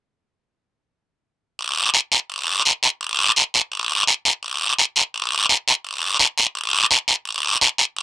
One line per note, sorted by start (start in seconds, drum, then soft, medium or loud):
1.59 long guiro medium
1.94 short guiro medium
2.12 short guiro medium
2.30 long guiro medium
2.65 short guiro medium
2.83 short guiro medium
3.01 long guiro medium
3.36 short guiro medium
3.54 short guiro medium
3.72 long guiro medium
4.07 short guiro medium
4.25 short guiro medium
4.43 long guiro medium
4.79 short guiro medium
4.96 short guiro medium
5.14 long guiro medium
5.49 short guiro medium
5.68 short guiro medium
5.84 long guiro medium
6.19 short guiro medium
6.38 short guiro medium
6.55 long guiro medium
6.91 short guiro medium
7.08 short guiro medium
7.25 long guiro medium
7.61 short guiro medium
7.78 short guiro medium
7.97 long guiro medium